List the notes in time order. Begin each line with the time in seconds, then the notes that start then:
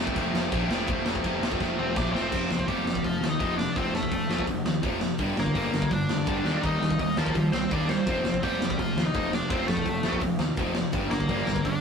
Already playing: F1 F2 C3
0.00 F3 A3 C4
0.07 kick
0.16 F1 F2 C3 F3 A3 C4, kick, crash
0.33 F1, snare
0.52 A#1 F2 C3 F3 A3 C4, kick, crash
0.68 F1 F2 C3 F3 A3 C4, snare
0.87 F1 F2 C3 F3 A3 C4, kick, crash
1.05 F1, snare
1.15 kick
1.24 F1 F2 C3 F3 A3 C4, kick, crash
1.41 F1 F2 C3 F3 A3 C4, snare
1.52 kick
1.59 F1 F2 C3 F3 A3 C4, kick, snare
1.78 F1 C4 C5
1.95 A#1 F2 C3 F3 A3 C4 D4 D5, kick, snare
2.12 F1 F2 C3 F3 A3 C4 C5, snare
2.31 F1 F2 C3 F3, kick, crash
2.50 F1 F2 C3, snare
2.59 kick
2.67 F1 F2 C3 F3 G3 G4, kick, open hi-hat
2.85 F1 F2 C3, snare
2.95 kick
3.03 F1 F2 C3 F3 F4, kick, open hi-hat
3.21 D#2 F2 C3, snare
3.30 D#4 D#5
3.39 F1 F2 C3 F3, kick, open hi-hat
3.57 F2 C3 D4 D5, snare
3.75 F1 F2 C3 F3 C4 C5, kick, open hi-hat
3.93 F1 F2 C3 A3 A4, snare
4.03 kick
4.11 F1 F2 C3, kick, open hi-hat
4.29 F1 F2 C3 F3, snare
4.38 kick
4.47 F1 F2 C3, kick, open hi-hat
4.65 D#2 F2 C3, snare
4.82 F1 F2 C3 F3, kick, open hi-hat
5.01 F2 C3, snare
5.18 G1 G2 D3 G3, kick, open hi-hat
5.37 G1 G2 D3 A#3 A#4, snare
5.46 kick
5.54 G1 G2 D3 G3, kick, open hi-hat
5.73 G1 G2 D3, snare
5.82 kick
5.91 G1 G2 D3 D4 D5, kick, open hi-hat
6.09 F1 G2 D3, snare
6.26 G1 G2 D3 G3, kick, open hi-hat
6.44 D#2 D#3 G3 A#3, snare
6.62 D#2 D#3 G3 A#3 D#4, kick, open hi-hat
6.67 D#5
6.81 D#2 D#3 G3, snare
6.91 kick
6.98 D#2 D#3 G3 D#4 D#5, kick, open hi-hat
7.16 D#2 D#3 F3 G3 A#3 F4, snare
7.26 kick
7.35 D#2 D#3 G3, kick, open hi-hat
7.52 C2 D#3 G3 C4 C5, snare
7.71 D#2 D#3 G3 A#3 D4 D5, kick, open hi-hat
7.89 D#3 G3 C4 C5, snare
8.06 F1 F2 C3 F3, kick, open hi-hat
8.24 F1 F2 C3, snare
8.34 kick
8.42 F1 F2 C3 F3 G3 G4, kick, open hi-hat
8.60 F1 F2 C3, snare
8.70 kick
8.78 F1 F2 C3 F3 F4, kick, open hi-hat
8.96 D#2 F2 C3, snare
9.06 D#4 D#5
9.14 F1 F2 C3 F3, kick, open hi-hat
9.33 F2 C3 D4 D5, snare
9.50 F1 F2 C3 F3 C4 C5, kick, open hi-hat
9.67 F1 F2 C3 A3 A4, snare
9.77 kick
9.85 F1 F2 C3, kick, open hi-hat
10.03 F1 F2 C3 F3, snare
10.13 kick
10.20 F1 F2 C3, kick, open hi-hat
10.39 D#2 F2 C3, snare
10.57 F1 F2 C3 F3, kick, open hi-hat
10.75 F2 C3, snare
10.92 G1 G2 D3 G3, kick, open hi-hat
11.10 G1 G2 D3 A#3 A#4, snare
11.20 kick
11.28 G1 G2 D3 G3, kick, open hi-hat
11.47 G1 G2 D3, snare
11.56 kick
11.65 G1 G2 D3 D4 D5, kick, open hi-hat